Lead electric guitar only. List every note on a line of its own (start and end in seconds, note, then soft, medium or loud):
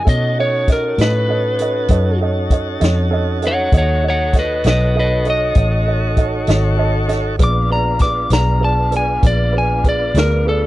0.09 0.38 D#5 medium
0.40 0.69 C#5 medium
0.72 1.00 A#4 medium
1.01 2.19 B4 medium
3.47 3.76 C#5 medium
3.47 3.75 F#5 medium
3.77 4.04 C#5 medium
3.77 4.06 F#5 medium
4.08 4.35 C#5 medium
4.08 4.37 F#5 medium
4.39 4.65 B4 medium
4.39 4.67 D#5 medium
4.69 4.96 B4 medium
4.69 4.97 D#5 medium
4.99 5.26 B4 medium
4.99 5.28 D#5 medium
5.30 7.08 D#5 medium
7.44 7.72 D6 medium
7.72 8.01 A#5 medium
8.02 8.31 D6 medium
8.33 8.63 A#5 medium
8.64 8.93 A5 medium
8.97 9.25 G#5 medium
9.27 9.55 D5 medium
9.58 9.86 G#5 medium
9.89 10.17 D5 medium
10.19 10.47 A#4 medium
10.49 10.66 A4 medium